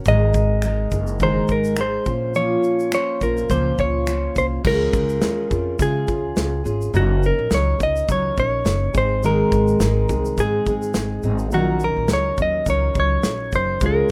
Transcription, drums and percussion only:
0.05 kick medium
0.05 shaker medium
0.34 kick medium
0.34 shaker medium
0.62 finger snap medium
0.62 shaker medium
0.91 kick medium
0.91 shaker medium
1.07 shaker soft
1.20 kick medium
1.20 shaker medium
1.48 kick medium
1.48 shaker soft
1.64 shaker medium
1.76 finger snap loud
1.76 shaker medium
2.06 kick medium
2.06 shaker medium
2.34 shaker medium
2.64 shaker medium
2.80 shaker soft
2.92 finger snap loud
2.92 shaker medium
3.21 kick medium
3.21 shaker medium
3.37 shaker soft
3.50 kick medium
3.50 shaker medium
3.78 kick medium
3.78 shaker soft
4.07 finger snap loud
4.07 shaker medium
4.36 kick medium
4.36 shaker soft
4.65 kick loud
4.65 crash medium
4.93 kick loud
4.93 shaker medium
5.09 shaker medium
5.22 snare loud
5.22 shaker medium
5.51 kick medium
5.51 shaker medium
5.79 kick medium
5.79 shaker medium
6.08 kick medium
6.08 shaker soft
6.37 snare loud
6.37 shaker medium
6.66 shaker medium
6.82 shaker soft
6.94 shaker medium
7.23 shaker medium
7.51 snare loud
7.51 shaker medium
7.80 kick medium
7.80 shaker medium
7.96 shaker soft
8.09 kick medium
8.09 shaker medium
8.37 kick medium
8.37 shaker soft
8.66 snare loud
8.66 shaker medium
8.94 kick loud
8.94 shaker medium
9.23 shaker medium
9.52 kick loud
9.52 shaker medium
9.68 shaker soft
9.80 snare loud
9.80 shaker medium
10.09 kick medium
10.09 shaker medium
10.25 shaker medium
10.38 kick medium
10.38 shaker medium
10.66 kick medium
10.66 shaker soft
10.82 shaker soft
10.94 snare loud
10.94 shaker medium
11.23 shaker soft
11.38 shaker medium
11.51 shaker medium
11.80 shaker medium
12.08 snare loud
12.08 shaker medium
12.38 kick medium
12.38 shaker medium
12.66 kick medium
12.66 shaker medium
12.95 kick medium
12.95 shaker soft
13.23 snare loud
13.23 shaker medium
13.52 kick medium
13.52 shaker medium
13.81 kick loud
13.81 shaker medium

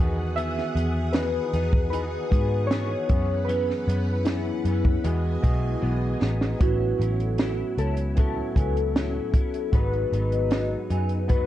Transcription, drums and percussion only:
0.38 closed hi-hat medium
0.58 snare soft
0.77 closed hi-hat medium
1.13 snare loud
1.13 closed hi-hat medium
1.53 closed hi-hat medium
1.73 kick medium
1.93 closed hi-hat medium
2.32 kick medium
2.32 closed hi-hat medium
2.71 snare loud
2.71 closed hi-hat medium
3.09 kick medium
3.09 closed hi-hat medium
3.49 closed hi-hat medium
3.70 snare soft
3.89 closed hi-hat medium
4.25 snare loud
4.25 closed hi-hat medium
4.65 closed hi-hat medium
4.85 kick medium
5.04 closed hi-hat medium
5.44 kick medium
5.44 closed hi-hat medium
6.22 snare medium
6.41 snare medium
6.61 kick medium
6.61 closed hi-hat medium
7.02 closed hi-hat medium
7.20 closed hi-hat soft
7.38 snare loud
7.38 closed hi-hat medium
7.78 closed hi-hat medium
7.97 closed hi-hat medium
8.17 kick medium
8.17 closed hi-hat medium
8.56 kick medium
8.56 closed hi-hat medium
8.77 closed hi-hat soft
8.96 snare loud
8.96 closed hi-hat medium
9.34 kick medium
9.34 closed hi-hat medium
9.54 closed hi-hat medium
9.73 kick loud
9.73 closed hi-hat medium
9.93 closed hi-hat soft
10.13 closed hi-hat medium
10.32 closed hi-hat soft
10.51 snare loud
10.51 closed hi-hat medium
10.90 closed hi-hat medium
11.09 closed hi-hat soft
11.29 kick medium
11.29 closed hi-hat medium

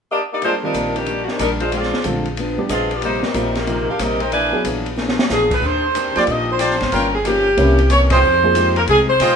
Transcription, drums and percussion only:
0.42 ride soft
0.74 hi-hat pedal soft
0.74 ride soft
0.96 ride soft
1.06 ride soft
1.28 snare soft
1.39 cross-stick medium
1.39 hi-hat pedal soft
1.39 ride medium
1.60 ride soft
1.72 ride soft
1.83 snare soft
1.94 snare soft
2.04 hi-hat pedal soft
2.04 ride soft
2.25 ride soft
2.37 ride soft
2.69 cross-stick medium
2.69 hi-hat pedal medium
2.69 ride soft
2.91 ride soft
3.02 ride soft
3.23 snare soft
3.34 hi-hat pedal soft
3.34 ride soft
3.55 snare soft
3.55 ride soft
3.67 ride soft
3.99 cross-stick medium
3.99 hi-hat pedal medium
3.99 ride medium
4.20 ride soft
4.32 ride soft
4.65 hi-hat pedal soft
4.65 ride medium
4.86 ride soft
4.98 snare soft
5.09 snare soft
5.19 snare medium
5.30 snare soft
5.30 hi-hat pedal soft
5.51 kick medium
5.51 crash medium
5.95 hi-hat pedal soft
5.95 ride medium
6.16 ride soft
6.27 ride soft
6.59 cross-stick medium
6.59 hi-hat pedal medium
6.59 ride medium
6.71 snare soft
6.81 snare soft
6.81 ride soft
6.92 ride soft
7.25 hi-hat pedal soft
7.25 ride medium
7.58 ride soft
7.79 ride soft
7.90 cross-stick medium
7.90 hi-hat pedal soft
7.90 ride medium
8.10 kick medium
8.10 ride medium
8.55 hi-hat pedal soft
8.55 ride medium
8.76 ride soft
8.88 ride medium
9.20 cross-stick medium
9.20 hi-hat pedal soft
9.20 ride medium

